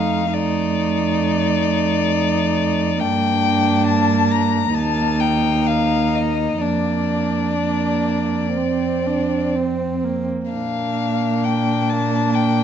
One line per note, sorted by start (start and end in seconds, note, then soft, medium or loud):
0.00 3.02 F2 soft
0.00 0.32 A3 soft
0.00 0.32 D#4 soft
0.00 0.36 F5 soft
0.33 2.96 A3 soft
0.33 3.03 D#4 soft
0.33 3.02 D5 medium
3.00 4.75 G2 soft
3.00 4.71 A#3 soft
3.00 4.75 D4 soft
3.00 3.86 G5 medium
3.87 4.33 A5 medium
4.31 4.76 A#5 medium
4.75 6.59 D#2 soft
4.75 6.59 A#3 soft
4.75 6.62 D#4 soft
4.75 5.22 A5 medium
5.20 5.68 G5 medium
5.66 6.17 F5 medium
6.15 6.63 D#5 soft
6.61 10.27 F2 soft
6.61 7.49 A#3 soft
6.61 8.56 D4 soft
6.61 9.51 D5 soft
7.60 8.59 A#3 soft
8.57 9.08 C4 soft
8.57 10.28 C4 soft
9.06 9.57 D4 soft
9.55 10.06 C4 soft
10.04 10.52 A#3 soft
10.51 12.63 A#2 soft
10.51 12.63 A#3 soft
10.51 12.63 D4 soft
10.51 11.46 F5 soft
11.44 11.92 G5 soft
11.90 12.36 A5 soft
12.35 12.63 G5 medium